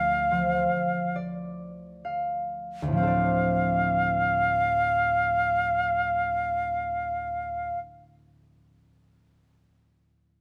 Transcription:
Already playing: harp D2 D3 F3 A3, flute F5
0.31 harp F3
1.16 harp D5
2.05 harp F5
2.82 harp D2
2.88 harp A2
2.92 harp F3, flute F5
2.97 harp C4
3.03 harp A4
3.07 harp D5

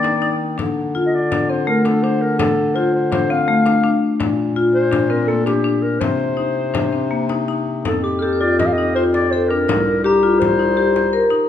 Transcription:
Already playing: bass clarinet D#3, clarinet D5
0.03 marimba D#4, frame drum
0.22 marimba D#4, frame drum
0.58 bass clarinet D3, marimba D4, frame drum
0.95 marimba F4, frame drum
1.06 clarinet D#5
1.15 clarinet D5
1.32 marimba D4, frame drum
1.49 marimba C4, clarinet C5
1.67 marimba A3, clarinet A#4
1.85 marimba D4, clarinet A4, frame drum
2.03 marimba D4, clarinet C5
2.22 clarinet A#4
2.39 marimba D4, clarinet A4, frame drum
2.75 marimba F4, clarinet C5, frame drum
2.94 clarinet C5
3.12 marimba D4, clarinet C5, frame drum
3.30 marimba C4, clarinet F5
3.48 marimba A3
3.66 marimba D4, frame drum
3.84 marimba D4
4.20 bass clarinet A#2, marimba D4, frame drum
4.56 marimba F4, frame drum
4.75 clarinet C5
4.92 marimba D4, frame drum
5.10 marimba C4, clarinet A#4
5.28 marimba A#3, clarinet A4
5.46 marimba D4, clarinet G4, frame drum
5.64 marimba D4
5.82 clarinet A#4
6.00 bass clarinet C3, marimba C4, clarinet C5, frame drum
6.20 frame drum
6.37 marimba D#4, frame drum
6.74 marimba D4, frame drum
6.92 marimba C4, frame drum
7.11 marimba A#3
7.29 marimba D#4, frame drum
7.48 marimba D#4
7.67 frame drum
7.85 bass clarinet F2, marimba D#4, clarinet A4, frame drum
8.04 clarinet G4, glockenspiel D6
8.19 marimba G4, clarinet A4, glockenspiel F6
8.33 glockenspiel G6
8.41 marimba F4, clarinet D5
8.59 clarinet D#5, frame drum
8.66 clarinet F5
8.73 clarinet D#5
8.78 marimba D#4
8.95 marimba F4, clarinet C5, frame drum
9.14 clarinet D5, frame drum
9.31 marimba A4, clarinet C5
9.49 marimba D4, clarinet A#4, frame drum
9.69 bass clarinet C2, marimba D#4, frame drum
10.04 clarinet G4, marimba G4, glockenspiel A#5
10.23 marimba F4
10.39 clarinet C5, frame drum
10.59 marimba D#4
10.77 marimba G4, frame drum
10.96 frame drum
11.13 marimba A#4
11.31 marimba D#4, frame drum

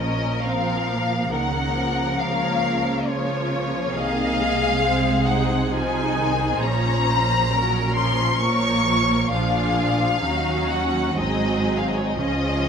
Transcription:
Already playing: double bass section A#1, cello section A#2, viola section F3, violin section A#4
0.00 viola section C#4, violin section D#5
0.45 viola section F3 C4, violin section F5
0.91 viola section A#3
1.33 double bass section C#2, cello section C#3, viola section D#3 A#3, violin section A#4 F#5
1.77 viola section F3
2.21 violin section C#5 F5
3.08 viola section F3, violin section F4 C#5
3.95 double bass section C2, cello section C3, viola section D#3, violin section G#4 D#5 F5
4.41 viola section G#3
4.84 viola section C4, violin section C5
5.27 viola section D#4, violin section F#5
5.72 viola section F3 D#4, violin section G#4 C5 G#5
6.17 viola section D#3
6.61 double bass section A#1, cello section A#2, viola section F3 C#4, violin section C#5 A#5
7.07 violin section C5
7.51 viola section F#3 C#4, violin section A#4
7.96 viola section F3, violin section C6
8.41 viola section F3 A#3, violin section A#4 C#5 C#6
9.31 double bass section A#1, cello section A#2, viola section F3 D4, violin section F4 G#4 F5
10.23 double bass section D#2, cello section D#2, viola section F#3 C#4, violin section D#4 F#4
10.71 violin section F#5
11.17 double bass section G#1, cello section G#2, viola section F#3 C4, violin section D#4 G#4 D#5
11.78 violin section F5
11.88 violin section D#5
11.97 violin section C#5
12.08 violin section D#5
12.17 double bass section C#2, cello section C#3, viola section F3 C#4, violin section F4 G#4 D#5

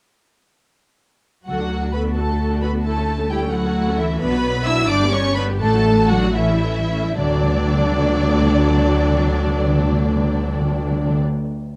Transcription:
1.47 double bass section D2, timpani D3, cello section F#3, violin section F#4 F#5, viola section F#4 A4
1.59 viola section D4 F#4
1.71 viola section F#4 A4
1.83 viola section D4 F#4
1.93 cello section B3, viola section F#4 A4, violin section B4 B5
2.06 viola section D4 F#4
2.16 cello section A3, viola section F#4 A4, violin section A4 A5
2.30 viola section D4 F#4
2.40 viola section F#4 A4
2.52 viola section D4 F#4
2.61 cello section B3, viola section F#4 A4, violin section B4 B5
2.74 viola section D4 F#4
2.84 cello section A3, viola section A3 E4, violin section A4 A5
2.97 viola section C#4 A4
3.08 viola section A3 E4
3.19 viola section C#4 A4
3.29 cello section G3, viola section A3 E4, violin section G4 G5
3.42 viola section C#4 A4
3.53 cello section F#3, viola section A3 E4, violin section F#4 F#5
3.64 viola section C#4 A4
3.76 viola section A3 E4
3.88 viola section C#4 A4
3.98 cello section E3, viola section A3 E4, violin section E4 E5
4.11 viola section C#4 A4
4.21 double bass section B1, viola section F#3 D4, cello section B3, violin section B4 B5
4.32 viola section B3 F#4
4.44 viola section F#3 D4
4.55 viola section B3 F#4
4.65 viola section F#3 D4, cello section E4, violin section E5 E6
4.78 viola section B3 F#4
4.88 double bass section G1, viola section G3 D4, cello section D4, violin section D5 D6
5.02 viola section B3 G4
5.12 viola section G3 D4, cello section C#4, violin section C#5 C#6
5.24 viola section B3 G4
5.35 viola section G3 D4, cello section B3, violin section B4 B5
5.49 viola section B3 G4
5.60 double bass section A1, timpani A2, cello section A3, viola section A3 D4, violin section A4 A5
5.73 viola section F#3 F#4
5.85 viola section A3 D4
5.97 viola section F#3 F#4
6.09 cello section F#3, viola section A3 D4, violin section F#4 F#5
6.24 viola section F#3 F#4
6.35 cello section E3, viola section A3 C#4, violin section E4 E5
6.50 viola section G3 E4
6.64 viola section A3 C#4
6.78 viola section G3 E4
6.91 viola section A3 C#4
7.04 viola section G3 E4
7.17 double bass section D2, cello section D3, timpani D3, viola section F#3 D4, violin section D4 D5
7.23 timpani D3
7.29 timpani D3
7.36 timpani D3
7.43 timpani D3
7.49 timpani D3
7.55 timpani D3
7.61 timpani D3
7.67 timpani D3
7.73 timpani D3
7.79 timpani D3
7.85 timpani D3
7.92 timpani D3
7.98 timpani D3
8.04 timpani D3
8.11 timpani D3
8.17 timpani D3
8.23 timpani D3
8.29 timpani D3
8.35 timpani D3
8.41 timpani D3
8.48 timpani D3
8.54 timpani D3
8.60 timpani D3
8.66 timpani D3
8.72 timpani D3
8.78 timpani D3
8.84 timpani D3
8.91 timpani D3
8.97 timpani D3
9.04 timpani D3
9.10 timpani D3
9.16 timpani D3
9.22 timpani D3
9.28 timpani D3
9.35 timpani D3
9.41 timpani D3
9.47 timpani D3
9.54 timpani D3
9.60 timpani D3
9.66 timpani D3
9.72 timpani D3
9.78 timpani D3
9.84 timpani D3
9.91 timpani D3
9.97 timpani D3
10.04 timpani D3
10.10 timpani D3
10.16 timpani D3
10.22 timpani D3
10.29 timpani D3
10.35 timpani D3
10.41 timpani D3
10.48 timpani D3
10.54 timpani D3
10.60 timpani D3
10.66 timpani D3
10.72 timpani D3
10.79 timpani D3
10.85 timpani D3
10.91 timpani D3
10.97 timpani D3
11.03 timpani D3
11.09 timpani D3
11.15 timpani D3

